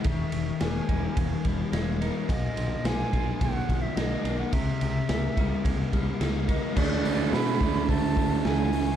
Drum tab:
CC |----------------|----------------|----------------|x---------------|
RD |x-x-x-x-x-x-x-x-|x-x-x-x-x-x-x-x-|x-x-x-x-x-x-x-x-|----------------|
HH |----------------|----------------|----------------|--o-o-o-o-o-o-o-|
SD |----o-------o---|----oo------o---|----o-------o---|----o-------o---|
BD |o-----o-o-o-----|o-----o-o-o-----|o-----o-o-o---o-|o-----o-o-o-----|